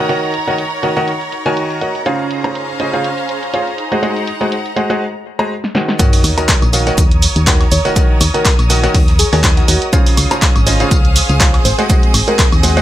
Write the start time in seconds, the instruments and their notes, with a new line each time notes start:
Already playing: string section D#4 A#4 C#5 F#5, string machine A#5
0.09 grand piano D#3 F#4 A#4 C#5 D#5 F#5, closed hi-hat
0.34 closed hi-hat
0.47 grand piano D#3 F#4 A#4 C#5 D#5 F#5, closed hi-hat
0.58 closed hi-hat
0.83 grand piano D#3 F#4 A#4 C#5 D#5 F#5, closed hi-hat
0.97 grand piano D#3 F#4 A#4 C#5 D#5 F#5, closed hi-hat
1.08 closed hi-hat
1.21 closed hi-hat
1.32 closed hi-hat
1.46 grand piano D#3 F#4 A#4 C#5 D#5 G#5, closed hi-hat
1.57 closed hi-hat
1.70 closed hi-hat
1.81 grand piano F#4 A#4 C#5 D#5 F#5, closed hi-hat
1.95 closed hi-hat
2.06 grand piano C#3 F4 G#4 C5 C#5 F5, string section C#4, closed hi-hat
2.15 string section G#4 C5
2.31 closed hi-hat
2.44 grand piano C#3 F4 G#4 C5 C#5 A#5, closed hi-hat
2.48 string section F5
2.55 closed hi-hat
2.80 grand piano C#3 F4 G#4 C5 C#5 D#5, closed hi-hat
2.93 grand piano C#3 F4 G#4 C5 C#5 F5, closed hi-hat
3.04 closed hi-hat
3.18 closed hi-hat
3.29 closed hi-hat
3.43 closed hi-hat
3.54 grand piano F4 G#4 C5 C#5 F5, closed hi-hat
3.67 closed hi-hat
3.78 string section D#4, closed hi-hat
3.92 grand piano G#3 F#4 G#4 C5 D#5 F#5, closed hi-hat
3.97 string section F#5
4.03 grand piano G#3 F#4 G#4 C5 D#5 F#5, closed hi-hat
4.16 closed hi-hat
4.27 closed hi-hat
4.41 grand piano G#3 F#4 G#4 C5 D#5 F#5, closed hi-hat
4.52 closed hi-hat
4.66 closed hi-hat
4.76 grand piano G#3 F#4 G#4 C5 D#5 F#5, closed hi-hat
4.90 grand piano G#3 F#4 G#4 C5 D#5 F#5, closed hi-hat
5.39 grand piano G#3 F#4 G#4 C5 D#5 A#5
5.64 snare
5.75 grand piano D#3 F#4 G#4 C5 D#5 F#5, snare
5.88 snare
5.99 grand piano D#3 F#4 A#4 C#5 D#5 F#5, string machine D#6, kick, closed hi-hat, tambourine, sub drop, shaker
6.10 string section C#5, closed hi-hat, open hi-hat
6.18 string section A#4
6.24 fm bass D#2, open hi-hat, tambourine, high woodblock, shaker
6.38 grand piano D#3 F#4 A#4 C#5 D#5 A#5, closed hi-hat, tambourine
6.48 kick, snare, clap, closed hi-hat, tambourine, shaker
6.62 fm bass A#1, closed hi-hat, tambourine, high woodblock
6.73 grand piano D#3 F#4 A#4 C#5 D#5 F5, open hi-hat, tambourine, shaker
6.87 grand piano D#3 F#4 A#4 C#5 D#5 F#5, snare, closed hi-hat, tambourine
6.98 fm bass D#2, kick, closed hi-hat, tambourine, shaker
7.11 closed hi-hat
7.22 open hi-hat, tambourine, shaker
7.36 fm bass D#2, closed hi-hat, tambourine
7.47 grand piano D#3 F#4 A#4 C#5 D#5 F#5, kick, snare, clap, closed hi-hat, tambourine, shaker
7.61 snare, closed hi-hat, high woodblock
7.72 fm bass D#2, soft synth lead C#5, open hi-hat, tambourine, shaker
7.85 grand piano D#3 F#4 A#4 C#5 D#5 F#5, soft synth lead C#5, snare, closed hi-hat, tambourine
7.96 grand piano D#3 F#4 A#4 C#5 D#5 F#5, kick, closed hi-hat, tambourine, shaker
8.21 fm bass D#2, snare, open hi-hat, tambourine, high woodblock, shaker
8.34 grand piano D#3 F#4 A#4 C#5 D#5 F#5, soft synth lead A#4, closed hi-hat, tambourine
8.45 kick, snare, clap, closed hi-hat, tambourine, shaker
8.59 fm bass A#1, closed hi-hat, tambourine, high woodblock
8.70 grand piano D#3 F#4 A#4 C#5 D#5 F#5, snare, open hi-hat, tambourine, shaker
8.83 grand piano D#3 F#4 A#4 C#5 D#5 F#5, snare, closed hi-hat, tambourine
8.94 fm bass D#2, kick, closed hi-hat, open hi-hat, tambourine
9.08 snare, closed hi-hat
9.19 soft synth lead G#4, open hi-hat, tambourine, shaker
9.33 fm bass D#2, grand piano D#3 F#4 A#4 C#5 D#5 G#5, soft synth lead G#4, open hi-hat, tambourine
9.44 kick, snare, clap, closed hi-hat, tambourine, shaker
9.57 soft synth lead F#4, snare, closed hi-hat
9.68 fm bass D#2, grand piano F#4 A#4 C#5 D#5 F#5, soft synth lead F#4, open hi-hat, tambourine, shaker
9.82 closed hi-hat, tambourine
9.93 grand piano C#3 F4 G#4 C5 C#5 F5, string section C#4, kick, closed hi-hat, tambourine, shaker
10.06 closed hi-hat, open hi-hat
10.17 fm bass C#2, open hi-hat, tambourine, high woodblock, shaker
10.31 grand piano C#3 F4 G#4 C5 C#5 A#5, string section G#4, closed hi-hat, tambourine
10.42 kick, snare, clap, closed hi-hat, tambourine, shaker
10.56 fm bass G#1, closed hi-hat, tambourine, high woodblock
10.66 grand piano C#3 F4 G#4 C5 C#5 D#5, string section C5, open hi-hat, tambourine, shaker
10.71 string section F5
10.80 grand piano C#3 F4 G#4 C5 C#5 F5, snare, closed hi-hat, tambourine
10.91 fm bass C#2, kick, closed hi-hat, tambourine, shaker
11.05 closed hi-hat
11.16 open hi-hat, tambourine, shaker
11.29 fm bass C#2, closed hi-hat, tambourine
11.40 grand piano F4 G#4 C5 C#5 F5, kick, snare, clap, closed hi-hat, tambourine, shaker
11.54 snare, closed hi-hat, high woodblock
11.65 fm bass G#1, string section C4, soft synth lead C5, open hi-hat, tambourine, shaker
11.78 grand piano G#3 F#4 G#4 C5 D#5 F#5, soft synth lead C5, snare, closed hi-hat, tambourine
11.89 grand piano G#3 F#4 G#4 C5 D#5 F#5, kick, closed hi-hat, tambourine, shaker
12.03 closed hi-hat
12.09 string section D#5
12.14 fm bass G#1, snare, open hi-hat, tambourine, high woodblock, shaker
12.27 grand piano G#3 F#4 G#4 C5 D#5 F#5, soft synth lead A#4, string section F#5, closed hi-hat, tambourine
12.39 kick, snare, clap, closed hi-hat, tambourine, shaker
12.52 fm bass D#2, closed hi-hat, tambourine, high woodblock
12.63 grand piano G#3 F#4 G#4 C5 D#5 F#5, soft synth lead G#4, snare, open hi-hat, tambourine, shaker
12.77 grand piano G#3 F#4 G#4 C5 D#5 F#5, snare, closed hi-hat, tambourine